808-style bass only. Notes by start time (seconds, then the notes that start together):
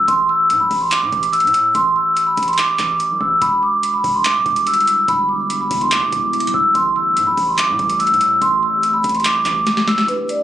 0.08 A1
0.50 A2
0.60 A1
0.71 A1
1.02 A2
1.12 A1
1.44 A2
1.75 A1
2.37 A1
2.79 A1
3.10 C2
3.21 A1
3.42 E1
4.04 E1
4.35 D1
4.46 E1
5.08 E1
5.71 E1
5.92 E2
6.02 E1
6.12 E1
6.44 D1
6.54 E1
6.75 A1
7.17 A2
7.27 A1
7.37 A1
7.69 A2
7.79 A1
8.10 A2
8.42 A1
9.04 A1
9.46 A1
9.88 C2